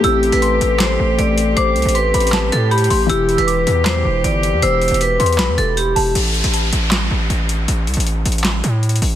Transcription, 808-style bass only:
X:1
M:4/4
L:1/16
Q:1/4=157
K:Ephr
V:1 name="808-style bass" clef=bass
A,,,3 A,,,3 A,,,4 A,,,2 A,,,4 | A,,,2 C,, A,,,3 A,,,4 A,,4 A,,,2 | E,,,3 E,,,3 E,,4 E,,,2 G,,,3 E,, | E,,,3 E,,,3 E,,2 B,,, E,, E,,,4 E,,,2 |
A,,,3 A,,,3 A,,,4 A,,,2 A,,,4 | A,,,2 C,, A,,,3 A,,,4 A,,4 A,,,2 |]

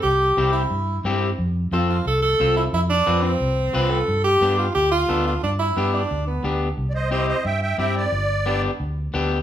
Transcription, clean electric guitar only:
X:1
M:4/4
L:1/8
Q:1/4=178
K:C
V:1 name="Clean electric guitar"
z2 [CEG] z3 [CEG] z | z2 [CFA] z3 [CFA] z | z2 [CFB] z3 [CFB] z | z2 [B,DG] z3 [B,DA] z |
z2 [B,DG] z3 [B,DG] z | z2 [CEG] z3 [CEG] z | z2 [B,DG] z3 [B,DG] z |]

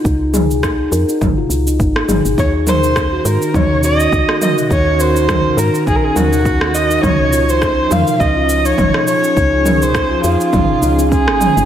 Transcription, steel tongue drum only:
X:1
M:4/4
L:1/16
Q:"Swing 16ths" 1/4=103
K:Db
V:1 name="Steel tongue drum"
E z A z E2 B E2 F z E E z A z | E2 B E2 G z E E z G2 E2 B E- | E G z E z4 E2 B E2 G z E | E z F2 E2 B E2 F z E E z F2 |
E2 B E2 F z E E z E D D A A E |]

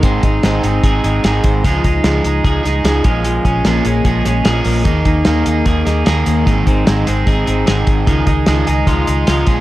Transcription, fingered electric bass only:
X:1
M:4/4
L:1/8
Q:1/4=149
K:Dblyd
V:1 name="Fingered electric bass" clef=bass
A,,, A,,, A,,, A,,, A,,, A,,, A,,, A,,, | D,, D,, D,, D,, D,, D,, D,, B,,,- | B,,, B,,, B,,, B,,, B,,, B,,, B,,, B,,, | E,, E,, E,, E,, E,, E,, E,, E,, |
A,,, A,,, A,,, A,,, A,,, A,,, A,,, A,,, | D,, D,, D,, D,, D,, D,, D,, B,,, |]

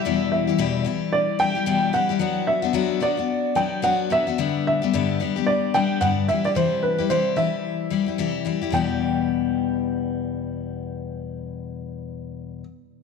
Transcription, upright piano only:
X:1
M:4/4
L:1/16
Q:"Swing 16ths" 1/4=111
K:Em
V:1 name="Upright piano"
e2 e4 z2 d2 g4 f2- | f2 e4 d4 g2 f2 e2- | e2 e4 z2 d2 g2 f2 e d | c2 B2 c2 e8 z2 |
g16- | g16 |]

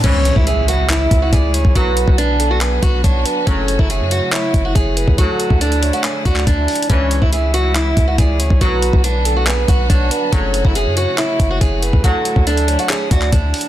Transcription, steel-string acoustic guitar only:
X:1
M:4/4
L:1/16
Q:1/4=140
K:C#phr
V:1 name="Steel-string acoustic guitar"
C3 E G2 F2 E3 F G4 | F4 D3 F G2 F2 D4 | C3 E G2 F2 E3 F G4 | F4 D3 F G2 F2 D4 |
C3 E G2 F2 E3 F G4 | F4 D3 F G2 F2 D4 | C3 E G2 F2 E3 F G4 | F4 D3 F G2 F2 D4 |]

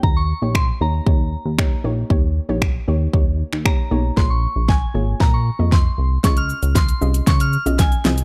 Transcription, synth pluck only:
X:1
M:4/4
L:1/16
Q:1/4=116
K:Ebmix
V:1 name="Synth pluck"
[B,EGd]2 z [B,EGd]2 z [B,EGd] z [B,EGd]3 z [B,EGd] z [B,EGd] z | [B,EGd]2 z [B,EGd]2 z [B,EGd] z [B,EGd]3 z [B,EGd] z [B,EGd] z | [B,FAd]4 z2 [B,FAd]3 z2 [B,FAe]3 z2 | [DFAe]4 z2 [DFAe]3 z2 [DFAe]3 [CFAe]2 |]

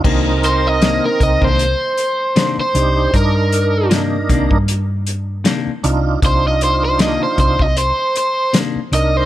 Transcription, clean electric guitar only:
X:1
M:4/4
L:1/16
Q:"Swing 16ths" 1/4=78
K:Cm
V:1 name="Clean electric guitar"
[C,E,B,D] z3 [C,E,B,D] z2 [E,B,D] z4 [C,E,B,D] z3 | z4 [C,E,B,D] z [C,E,B,D] z4 z [C,E,B,D] z3 | z4 [C,E,B,D] z6 z [C,E,B,D] z3 |]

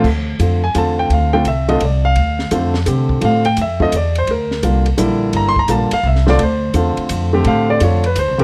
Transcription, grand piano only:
X:1
M:3/4
L:1/8
Q:"Swing" 1/4=170
K:Dm
V:1 name="Grand piano"
z3 ^g a =g | f g e _e d f- | f2 z4 | f g e _e d c |
B3 z3 | (3b c' b a f e d | c3 z3 | f d ^c =B =c z |]
V:2 name="Grand piano"
z2 [D,A,CF] z [D,A,CF]2- | [D,A,CF] [D,A,CF] z [D,A,CF] z2 | z2 [D,A,CF] z [D,A,CG]2 | [D,A,CF] z2 [D,A,CF] z2 |
z2 [D,G,B,F] z [D,G,B,E]2- | [D,G,B,E] z [D,G,B,F] z2 [D,A,CF] | z2 [D,A,CF]3 [D,A,CG]- | [D,A,CG]2 [D,A,CF] z2 [^C,A,=CG] |]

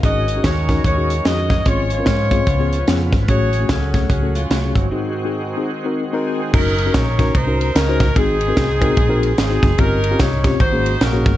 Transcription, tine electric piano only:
X:1
M:4/4
L:1/16
Q:"Swing" 1/4=148
K:Abmix
V:1 name="Tine electric piano"
[DEGA]2 z [DEGA]2 z [DEGB]2 z [DEGA]2 z [DEGA]2 z2 | [CDFA]2 z [CDFB]2 z [CDFA]2 z [_CDFA]2 z [CDFA]2 z2 | [=A,DG_A]2 z [=A,DG_A]2 z [=A,DG_A]2 z [=A,DG=A]2 z [A,DG_A]2 z2 | [CEGA]2 z [CEGA]2 z [CEGA]2 z [CEGB]2 z [CEGB]2 z2 |
[DEGB]2 z [DEGB]2 z [DEGB]2 z [DEGB]2 z2 [DEGc]2 z | [CEGA]2 z [CEGB]2 z [CEGB]2 z [CEGB]2 z2 [CEGA]2 z | [CDF=G]2 z [CDFG]2 z [CDFG]2 z [B,D_GA]2 z2 [B,DGA]2 z |]
V:2 name="Tine electric piano" clef=bass
A,,6 z8 z2 | A,,6 z2 D,6 z2 | =A,,6 z8 z2 | A,,6 z8 z2 |
z16 | A,,6 z8 z2 | =G,,6 z2 A,,6 z2 |]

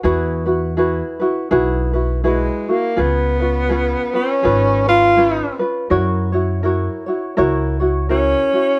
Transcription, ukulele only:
X:1
M:4/4
L:1/8
Q:"Swing" 1/4=82
K:Elyd
V:1 name="Ukulele"
[EFGB] [EFB] [EFGB] [EFB] [EFGB] [EFB] [EFGB] [EF] | [C^EGB] [CEB] [CEGB] [CEB] [CEGB] [CEB] [CEGB] [CEB] | [EFAc] [EFc] [EFAc] [EFc] [EFAc] [EFc] [EFAc] [EFc] |]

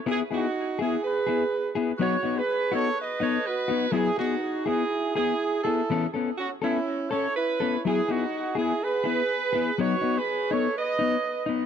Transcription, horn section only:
X:1
M:4/4
L:1/16
Q:"Swing 16ths" 1/4=123
K:E
V:1 name="Horn section"
[EG]2 [DF]4 [EG]2 [GB]6 z2 | [Fc]3 [GB]3 [Ac]2 [Bd]2 [Ac]2 [FB]4 | [EG]2 [DF]4 [EG]4 [EG]4 [EA]2- | [EA]2 z2 [CF]2 [CE]4 [Ac]2 [EB]4 |
[EG]2 [DF]4 [EG]2 [GB]8 | [Fc]3 [GB]3 [Ac]2 [Bd]6 z2 |]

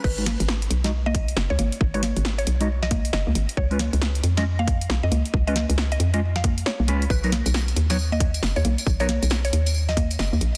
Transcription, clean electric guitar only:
X:1
M:4/4
L:1/16
Q:"Swing 16ths" 1/4=136
K:G#dor
V:1 name="Clean electric guitar"
z [G,DFB] z4 z [G,DFd] z8 | z [G,DFB] z4 z [G,DFd] z8 | z [G,CEB] z4 z [G,CEd] z8 | z [G,CEB] z4 z [G,CEd] z6 [G,CEB] z |
z [F,B,DA] z4 z [F,B,Dc] z8 | z [F,B,DA] z12 z2 |]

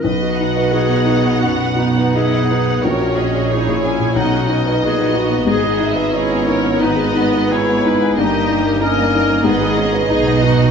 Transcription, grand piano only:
X:1
M:4/4
L:1/16
Q:1/4=90
K:B
V:1 name="Grand piano"
B,,, F D B D B, D B, F,, F D B D B, D B, | A,,, F C c C A,, C A,, B,,, F D B D B, D B, | G,, G D B D B, D B, D, G D B D B, D B, | =G,, A D A D A, D A, ^G,, G D B D B, D B, |]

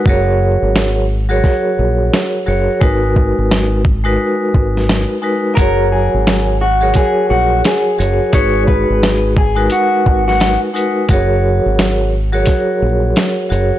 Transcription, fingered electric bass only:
X:1
M:4/4
L:1/16
Q:"Swing 16ths" 1/4=87
K:F#mix
V:1 name="Fingered electric bass" clef=bass
F,,,3 G,,,4- G,,, z2 A,,,2 z2 F,,, z | G,,,3 G,,,4- G,,, z2 G,,,3 z3 | F,,,3 G,,,4- G,,, z2 A,,,2 z2 F,,, z | G,,,3 G,,,4- G,,, z2 G,,,3 z3 |
F,,,3 G,,,4- G,,, z2 A,,,2 z2 F,,, z |]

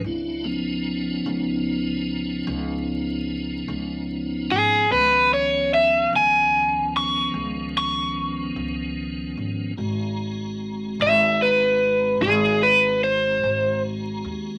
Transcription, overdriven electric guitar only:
X:1
M:12/8
L:1/8
Q:3/8=49
K:Dbmix
V:1 name="Overdriven electric guitar"
z8 z3 A | c d _f a2 d'2 d'4 z | z3 _f c2 A c =c2 z2 |]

